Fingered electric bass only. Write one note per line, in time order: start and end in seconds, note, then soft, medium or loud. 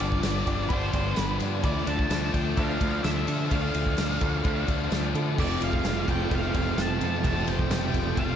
0.00 0.20 G1 loud
0.25 0.44 G1 medium
0.47 0.67 G1 loud
0.70 0.90 G1 loud
0.93 1.14 G1 loud
1.17 1.37 G1 medium
1.41 1.61 G2 loud
1.64 1.84 D2 medium
1.87 2.07 D2 medium
2.10 2.31 D2 loud
2.34 2.54 D2 medium
2.57 2.78 D2 loud
2.81 3.01 D2 loud
3.04 3.24 D2 medium
3.28 3.48 D3 medium
3.51 3.71 D2 loud
3.75 3.95 D2 medium
3.99 4.18 D2 medium
4.21 4.41 D2 medium
4.45 4.65 D2 loud
4.68 4.88 D2 loud
4.92 5.12 D2 medium
5.14 5.40 D3 medium
5.38 5.58 F1 loud
5.61 5.81 F1 medium
5.85 6.05 F1 medium
6.08 6.28 F1 medium
6.31 6.51 F1 medium
6.54 6.75 F1 loud
6.77 6.98 F1 medium
7.01 7.21 F2 medium
7.24 7.45 F1 loud
7.47 7.68 F1 medium
7.70 7.91 F1 loud
7.94 8.14 F1 medium
8.17 8.36 F1 medium